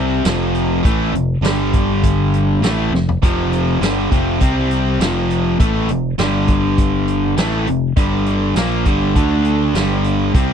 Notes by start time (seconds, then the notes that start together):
Already playing: C2 C3 G3 C4
0.25 F1 F2 C3 F3, snare, closed hi-hat, tambourine
0.55 closed hi-hat
0.84 A1 A2 E3 A3, kick, closed hi-hat
1.13 F1 F2 C3, closed hi-hat
1.41 G1 G2 D3 G3, closed hi-hat, tambourine
1.46 snare
1.73 kick, closed hi-hat
2.03 kick, closed hi-hat
2.34 closed hi-hat
2.61 A1 A2 E3 A3, closed hi-hat, tambourine
2.65 snare
2.90 F1 F2 C3
2.94 snare
3.09 floor tom
3.23 F1 F2 C3 F3, kick, closed hi-hat
3.53 closed hi-hat
3.81 G1 G2 D3 G3, snare, closed hi-hat, tambourine
4.11 F1 F2 C3 F3, kick, closed hi-hat
4.41 C2 C3 G3 C4, kick, closed hi-hat
4.71 closed hi-hat
5.00 F1 F2 C3 F3, snare, closed hi-hat, tambourine
5.31 closed hi-hat
5.59 A1 A2 E3 A3, kick, closed hi-hat
5.89 F1 F2 C3, closed hi-hat
6.19 G1 G2 D3 G3, snare, closed hi-hat, tambourine
6.48 kick, closed hi-hat
6.78 kick, closed hi-hat
7.08 closed hi-hat
7.37 A1 A2 E3 A3, snare, closed hi-hat, tambourine
7.67 F1 F2 C3, closed hi-hat
7.96 G1 G2 D3 G3, kick, closed hi-hat
8.26 closed hi-hat
8.55 A#1 A#2 F3 A#3, snare, closed hi-hat, tambourine
8.85 G1 G2 D3 G3, kick, closed hi-hat
9.15 D2 D3 A3 D4, kick, closed hi-hat
9.45 closed hi-hat
9.74 G1 G2 D3 G3, snare, closed hi-hat, tambourine
10.04 closed hi-hat
10.34 C2 C3 G3 C4, kick, closed hi-hat